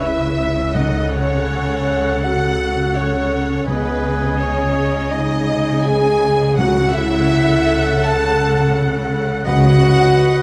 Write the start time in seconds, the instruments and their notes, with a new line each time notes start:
Already playing: double bass section C#2, cello section C#3, clarinet B4, viola section B4 E5, oboe E5
0.02 french horn section E4, flute E5, violin section E5
0.74 timpani C#3, french horn section D#4, clarinet A4, viola section A4 F#5, violin section D#5, flute D#5, oboe F#5
1.10 french horn section C#4, violin section C#5, flute C#5
2.22 french horn section F#4, violin section F#5, flute F#5
2.96 french horn section C#4, flute C#5, violin section C#5
3.66 double bass section C#2, timpani C#3, cello section C#3, french horn section B3, clarinet G#4, viola section G#4 D#5, violin section B4, flute B4, oboe G#5
4.40 french horn section C#4, violin section C#5, flute C#5
5.09 french horn section D#4, violin section D#5, flute D#5
5.85 french horn section G#4, violin section G#5, flute G#5
6.57 timpani C#3, french horn section F#4, viola section A4 F#5, clarinet A4, oboe F#5, violin section F#5, flute F#5
6.91 french horn section E4, violin section E5, flute E5
8.04 french horn section A4, violin section A5, flute A5
9.45 double bass section C#2, timpani C#3, cello section C#3, french horn section F#4, clarinet B4, viola section B4 D#5, oboe D#5, violin section F#5, flute F#5
9.64 viola section D#5
9.83 viola section F#5
10.00 viola section D#5
10.18 viola section B4
10.34 viola section D#5